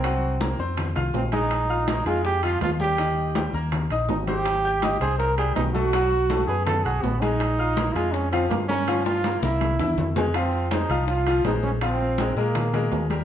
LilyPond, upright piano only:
\new Staff \with { instrumentName = "Upright piano" } { \time 4/4 \key bes \dorian \tempo 4 = 163 <ges ges' ges''>4 <bes bes' bes''>8 <c' c'' c'''>4 <f' f'' f'''>4 <aes aes' aes''>8~ | <aes aes' aes''>8 <f' f'' f'''>8 <bes bes' bes''>8 <aes aes' aes''>4 <f f' f''>4 <g g' g''>8 | <ees ees' ees''>4 <g g' g''>8 <bes bes' bes''>4 <ees' ees'' ees'''>4 <c' c'' c'''>8~ | <c' c'' c'''>8 <g' g'' g'''>8 <ees' ees'' ees'''>8 <c' c'' c'''>4 <g g' g''>4 <a a' a''>8 |
<fis fis' fis''>4 <a a' a''>8 <b b' b''>4 <fis' fis'' fis'''>4 <aes aes' aes''>8~ | <aes aes' aes''>8 <f' f'' f'''>8 <bes bes' bes''>8 <aes aes' aes''>4 <f f' f''>4 <bes bes' bes''>8 | <f f' f''>4 <bes bes' bes''>8 <bes bes' bes''>4 <e' e'' e'''>4 <aes aes' aes''>8 | <f f' f''>4 <aes aes' c''>8 <f f' f''>4 <f f' f''>8 <aes aes' c''>4 |
<f f' f''>4 <aes aes' bes'>8 <aes aes' bes'>4 <aes aes' bes'>4 <g g' bes'>8 | }